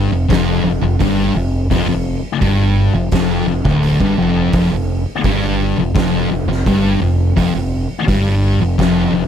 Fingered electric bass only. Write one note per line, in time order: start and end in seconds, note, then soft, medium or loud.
0.12 0.28 F1 medium
0.30 0.62 F1 medium
0.64 0.81 F1 medium
0.82 0.98 F1 medium
1.00 1.33 G1 medium
1.34 1.67 F1 medium
1.71 1.85 F1 medium
1.86 2.20 F1 medium
2.42 2.91 G1 medium
2.93 3.10 F1 medium
3.12 3.45 F1 medium
3.47 3.64 F1 medium
3.64 3.98 D1 loud
4.00 4.17 G1 medium
4.18 4.51 F1 loud
4.53 4.70 F1 medium
4.72 5.04 F1 medium
5.24 5.74 G1 loud
5.77 5.94 F1 medium
5.95 6.28 F1 medium
6.31 6.47 F1 medium
6.48 6.64 F1 medium
6.66 6.99 G1 medium
7.00 7.34 F1 medium
7.37 7.53 F1 loud
7.54 7.87 F1 medium
8.07 8.57 G1 medium
8.60 8.77 F1 medium
8.79 9.11 F1 medium
9.12 9.28 F1 medium